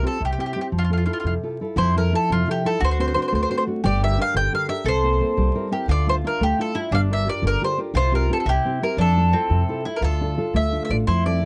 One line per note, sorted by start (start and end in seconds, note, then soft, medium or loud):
0.02 0.16 C4 soft
0.02 0.17 F4 soft
0.02 0.17 G4 medium
0.07 0.21 A4 medium
0.20 0.32 C2 medium
0.20 0.54 C3 medium
0.25 0.30 G4 medium
0.32 0.38 G4 medium
0.38 0.54 C4 soft
0.38 0.55 E4 soft
0.38 0.55 G4 soft
0.38 0.45 G4 medium
0.46 0.51 G4 soft
0.53 0.69 C4 soft
0.53 0.69 E4 soft
0.53 0.58 G4 medium
0.53 0.69 G4 soft
0.61 0.66 G4 medium
0.72 1.06 F2 medium
0.72 1.06 F3 medium
0.79 0.83 F4 medium
0.84 0.89 F4 soft
0.90 1.05 E4 soft
0.90 1.05 F4 soft
0.90 0.96 F4 soft
0.90 1.06 A4 soft
0.98 1.03 F4 soft
1.06 1.35 E4 soft
1.06 1.11 F4 soft
1.06 1.35 F4 soft
1.06 1.36 A4 soft
1.13 1.18 F4 soft
1.20 1.25 F4 soft
1.24 1.36 F2 medium
1.24 1.59 C3 medium
1.24 1.33 F4 soft
1.43 1.60 E4 soft
1.43 1.60 F4 soft
1.43 1.60 A4 soft
1.61 1.74 E4 soft
1.61 1.75 F4 soft
1.61 1.75 A4 soft
1.76 2.10 F2 medium
1.76 1.96 F3 medium
1.76 2.80 E4 medium
1.76 1.95 C5 medium
1.96 2.12 F3 soft
1.96 2.11 E4 soft
1.96 2.12 A4 medium
1.96 2.14 A#4 medium
2.13 2.41 F3 soft
2.13 2.41 E4 soft
2.13 2.41 A4 medium
2.13 2.30 A4 medium
2.30 2.42 F2 medium
2.30 2.64 C3 medium
2.30 2.48 F4 medium
2.48 2.75 F3 soft
2.48 2.64 E4 soft
2.48 2.67 G4 medium
2.48 2.64 A4 medium
2.65 2.78 E4 soft
2.65 2.78 F4 soft
2.65 2.79 A4 soft
2.65 2.81 A4 medium
2.81 3.15 D2 medium
2.81 3.15 D3 medium
2.81 3.83 F#4 loud
2.85 2.90 C5 medium
2.91 2.97 C5 medium
2.99 3.14 C4 medium
2.99 3.15 D4 soft
2.99 3.15 F#4 medium
2.99 3.05 C5 medium
3.08 3.12 C5 soft
3.14 3.43 C4 soft
3.14 3.43 D4 soft
3.14 3.43 F#4 soft
3.14 3.19 C5 medium
3.22 3.27 C5 medium
3.28 3.33 C5 medium
3.32 3.44 D2 medium
3.32 3.66 A3 medium
3.32 3.41 C5 medium
3.43 3.48 C5 medium
3.50 3.66 C4 medium
3.50 3.66 D4 soft
3.50 3.66 F#4 medium
3.50 3.56 C5 medium
3.57 3.62 C5 medium
3.67 3.80 C4 soft
3.67 3.80 D4 soft
3.67 3.80 F#4 soft
3.83 4.17 G1 loud
3.83 4.17 G3 medium
3.83 4.85 G4 medium
3.83 4.01 D5 medium
4.01 4.17 D4 soft
4.01 4.17 G4 soft
4.01 4.18 A#4 medium
4.01 4.19 E5 medium
4.18 4.46 D4 medium
4.18 4.46 G4 soft
4.18 4.46 A#4 medium
4.18 4.35 F5 loud
4.34 4.46 G1 medium
4.34 4.68 D3 medium
4.34 4.54 G5 loud
4.52 4.67 D4 soft
4.52 4.68 G4 soft
4.52 4.68 A#4 medium
4.52 4.69 F5 medium
4.68 4.82 D4 soft
4.68 4.83 G4 soft
4.68 4.83 A#4 soft
4.68 4.86 E5 medium
4.85 5.19 C2 loud
4.85 5.20 C3 medium
4.85 5.72 A4 loud
4.85 5.70 C5 loud
5.03 5.20 A#3 soft
5.03 5.19 C4 soft
5.03 5.19 E4 soft
5.20 5.49 A#3 medium
5.20 5.48 C4 soft
5.20 5.49 E4 soft
5.37 5.49 C2 medium
5.37 5.71 G3 medium
5.55 5.70 C4 soft
5.55 5.70 E4 soft
5.55 5.71 A#4 medium
5.71 5.85 C4 soft
5.71 5.86 E4 soft
5.71 5.88 G4 medium
5.71 5.86 A#4 soft
5.88 6.22 D2 medium
5.88 6.23 D3 medium
5.88 6.74 F4 medium
5.88 6.09 D5 medium
6.07 6.23 D4 soft
6.07 6.24 F4 soft
6.07 6.14 C5 medium
6.07 6.23 E5 soft
6.24 6.52 D4 medium
6.24 6.52 F4 medium
6.24 6.43 A#4 medium
6.24 6.52 E5 soft
6.40 6.52 D2 medium
6.40 6.75 A3 medium
6.40 6.59 G4 medium
6.58 6.73 D4 soft
6.58 6.74 E4 soft
6.58 6.74 F4 medium
6.58 6.76 A4 medium
6.75 6.88 D4 soft
6.75 6.91 E4 medium
6.75 6.89 E4 soft
6.75 6.89 F4 medium
6.91 7.25 G1 medium
6.91 7.26 G3 medium
6.91 7.98 D4 loud
6.91 7.00 F5 loud
7.10 7.25 F4 medium
7.10 7.26 G4 soft
7.10 7.27 A#4 medium
7.10 7.27 E5 medium
7.27 7.54 F4 medium
7.27 7.54 G4 soft
7.27 7.55 A#4 medium
7.27 7.44 D5 medium
7.42 7.54 G1 medium
7.42 7.77 D3 medium
7.47 7.62 A#4 loud
7.61 7.77 F4 soft
7.61 7.77 G4 soft
7.61 7.77 A#4 medium
7.61 7.78 C5 medium
7.78 7.91 F4 medium
7.78 7.92 G4 soft
7.78 7.92 A#4 soft
7.94 8.28 C2 loud
7.94 8.29 C3 medium
7.94 8.46 F4 loud
7.94 8.12 C5 loud
8.12 8.29 C4 medium
8.12 8.30 F4 soft
8.12 8.30 G4 medium
8.12 8.31 A#4 medium
8.30 8.43 C4 medium
8.30 8.44 F4 soft
8.30 8.44 G4 medium
8.30 8.37 A4 medium
8.40 8.47 A4 medium
8.45 8.57 C2 medium
8.45 8.81 C3 medium
8.45 8.98 E4 medium
8.45 8.80 G4 medium
8.65 8.81 C4 soft
8.65 8.81 E4 soft
8.65 8.82 G4 medium
8.82 8.95 C4 soft
8.82 8.96 E4 soft
8.82 8.96 G4 medium
8.82 9.00 A#4 medium
8.97 9.31 F2 loud
8.97 9.33 F3 medium
8.97 9.34 D4 medium
8.97 9.83 A4 medium
9.17 9.32 E4 soft
9.17 9.32 F4 soft
9.17 9.33 A4 medium
9.33 9.87 C4 medium
9.33 9.61 E4 soft
9.33 9.62 F4 soft
9.33 9.62 A4 medium
9.50 9.62 F2 medium
9.50 9.85 C3 medium
9.69 9.84 E4 soft
9.69 9.85 F4 soft
9.69 9.85 A4 soft
9.85 10.02 E4 medium
9.85 9.99 E4 soft
9.85 10.00 F4 soft
9.85 10.00 A4 soft
9.96 10.03 A#4 medium
10.01 10.36 D2 medium
10.01 10.37 D3 medium
10.01 11.07 F4 medium
10.01 10.52 A4 medium
10.21 10.36 D4 soft
10.21 10.37 F4 soft
10.21 10.37 A4 medium
10.37 10.66 D4 soft
10.37 10.66 F4 soft
10.37 10.66 A4 medium
10.54 10.77 D2 medium
10.54 10.89 A3 medium
10.54 10.83 E5 medium
10.72 10.89 D4 soft
10.72 10.90 F4 soft
10.72 10.90 A4 soft
10.85 10.90 E5 medium
10.89 11.01 A1 medium
10.89 11.04 D4 soft
10.89 11.05 F4 soft
10.89 11.05 A4 soft
10.89 10.95 D5 medium
11.07 11.41 F2 medium
11.07 11.24 F3 medium
11.07 11.45 E4 medium
11.07 11.24 C5 medium
11.25 11.42 F3 soft
11.25 11.41 C4 medium
11.25 11.42 A4 medium
11.25 11.45 D5 medium